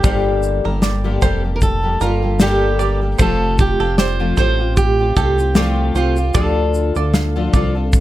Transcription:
Already playing: steel-string acoustic guitar G4
0.04 analog synth bass G1, twelve-string acoustic guitar G2 D3 G3 A#3 G4 A4, five-string banjo C5, kick, shaker
0.43 shaker
0.64 analog synth bass G1, twelve-string acoustic guitar G3 A#3 G4 A4, five-string banjo A#4
0.82 five-string banjo D5, snare, shaker
1.04 twelve-string acoustic guitar G2 D3 G3 A#3 G4 A4
1.22 analog synth bass F1, twelve-string acoustic guitar G3 A#3 G4 A4, five-string banjo C5, kick, shaker
1.44 twelve-string acoustic guitar G3 A#3 G4 A4
1.56 steel-string acoustic guitar A#4
1.61 steel-string acoustic guitar A4, kick, shaker
1.83 twelve-string acoustic guitar G3 A#3 G4 A4
2.01 analog synth bass G1, twelve-string acoustic guitar G3 A#3 G4 A4, steel-string acoustic guitar F4, five-string banjo A#4, shaker
2.22 twelve-string acoustic guitar G3 A#3 G4 A4
2.40 twelve-string acoustic guitar G2 D3 G3 A#3 G4 A4, steel-string acoustic guitar G4, snare, shaker
2.79 twelve-string acoustic guitar G3 A#3 G4 A4, five-string banjo D5, shaker
3.01 twelve-string acoustic guitar G3 A#3 G4 A4
3.18 analog synth bass F1, twelve-string acoustic guitar F3 A3 C4 F4 G4, steel-string acoustic guitar A4, five-string banjo C5, kick, shaker
3.58 steel-string acoustic guitar G4, kick, shaker
3.80 analog synth bass F1, twelve-string acoustic guitar C4 F4 G4, five-string banjo A4
3.98 steel-string acoustic guitar C5, five-string banjo D5, snare, shaker
4.20 twelve-string acoustic guitar F3 A3 C4 F4 G4
4.37 analog synth bass A1, twelve-string acoustic guitar A3 C4 F4 G4, five-string banjo C5, steel-string acoustic guitar C5, kick, shaker
4.59 twelve-string acoustic guitar C4 F4 G4
4.77 steel-string acoustic guitar G4, kick, shaker
4.99 twelve-string acoustic guitar C4 F4 G4
5.16 analog synth bass C2, twelve-string acoustic guitar A3 C4 F4 G4, steel-string acoustic guitar G4, five-string banjo A4, kick, shaker
5.38 twelve-string acoustic guitar C4 F4 G4, shaker
5.55 twelve-string acoustic guitar F3 A3 C4 F4 G4, five-string banjo D5, snare, shaker
5.95 analog synth bass C2, twelve-string acoustic guitar A3 C4 F4 G4, steel-string acoustic guitar F4, five-string banjo C5, shaker
6.17 twelve-string acoustic guitar C4 F4 G4, shaker
6.34 analog synth bass D2, twelve-string acoustic guitar D3 F3 D4 F4 A4, steel-string acoustic guitar A4, five-string banjo D5, kick, shaker
6.74 shaker
6.95 analog synth bass D2, twelve-string acoustic guitar D4 F4 A4, five-string banjo D5, shaker
7.14 five-string banjo F5, snare, shaker
7.36 twelve-string acoustic guitar D3 F3 D4 F4 A4
7.53 analog synth bass C2, twelve-string acoustic guitar F3 D4 F4 A4, five-string banjo D5, kick, shaker
7.75 twelve-string acoustic guitar D4 F4 A4
7.93 kick, shaker

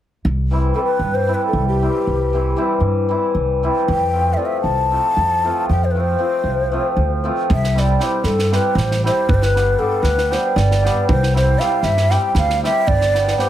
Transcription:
0.25 upright bass C2
0.51 hammered dulcimer E3 G3 C4 E4
0.74 hammered dulcimer E3 G3 C4 E4, ney A4
0.84 ney B4
0.99 upright bass G2
1.15 ney C5
1.27 hammered dulcimer E3 G3 C4 E4
1.34 ney B4
1.47 ney A4
1.53 upright bass C2
1.68 ney G4
1.81 hammered dulcimer E3 G3 C4 E4
2.07 upright bass C2
2.33 hammered dulcimer E3 G3 C4 E4
2.56 hammered dulcimer E3 G3 C4 E4
2.80 upright bass G2
3.09 hammered dulcimer E3 G3 C4 E4
3.35 upright bass C2
3.63 hammered dulcimer E3 G3 C4 E4
3.88 upright bass F2
3.93 ney G5
4.12 hammered dulcimer F3 A3 C4 F4
4.34 hammered dulcimer F3 A3, ney D5 E5
4.38 hammered dulcimer C4 F4
4.46 ney E5
4.61 upright bass C2, ney A5
4.90 hammered dulcimer F3 A3 C4 F4
5.17 upright bass F2
5.44 hammered dulcimer F3 A3 C4 F4
5.69 upright bass F2, ney G5
5.84 ney C5
5.91 hammered dulcimer F3, ney B4
5.96 hammered dulcimer A3 C4 F4
6.00 ney C5
6.19 hammered dulcimer F3 A3 C4 F4
6.44 upright bass C2
6.72 hammered dulcimer F3 A3 C4 F4
6.96 upright bass D2
7.24 hammered dulcimer F3 A3 C4 F4
7.50 upright bass C2, ney E5, kick
7.64 snare
7.74 hammered dulcimer G3 C4 E4 G4, snare
7.79 ney D5
7.99 hammered dulcimer G3 C4 E4 G4, snare
8.04 ney C5
8.24 upright bass G2, ney A4, snare
8.39 snare
8.51 hammered dulcimer G3 C4 E4 G4, ney B4, snare
8.75 upright bass A1, ney C5, snare
8.91 snare
9.04 hammered dulcimer G3 C4 E4 G4, ney C5, snare
9.29 upright bass G1, ney B4, kick
9.34 ney C5
9.42 ney B4, snare
9.54 hammered dulcimer G3 B3 D4 G4, snare
9.79 hammered dulcimer G3 B3 D4 G4, ney A4
10.03 upright bass D2, ney B4, snare
10.18 snare
10.30 hammered dulcimer G3 B3 D4 G4, ney C5, snare
10.56 upright bass G1, ney D5, snare
10.71 snare
10.82 hammered dulcimer G3 B3 D4 G4
10.86 snare
11.09 upright bass C2, ney C5, kick
11.23 snare
11.33 hammered dulcimer G3 C4 E4 G4, ney C5, snare
11.59 hammered dulcimer G3 C4 E4 G4, ney F5, snare
11.83 upright bass G2, ney E5, snare
11.97 snare
12.10 hammered dulcimer G3 C4 E4 G4, ney G5, snare
12.35 upright bass D2, ney F5, snare
12.50 snare
12.63 hammered dulcimer G3 C4 E4 G4, ney E5, snare
12.87 upright bass G1, ney D5, kick
13.01 snare
13.13 hammered dulcimer G3 B3 D4 G4, snare
13.28 snare
13.33 ney D5
13.37 hammered dulcimer G3 B3 D4 G4, ney C5, snare

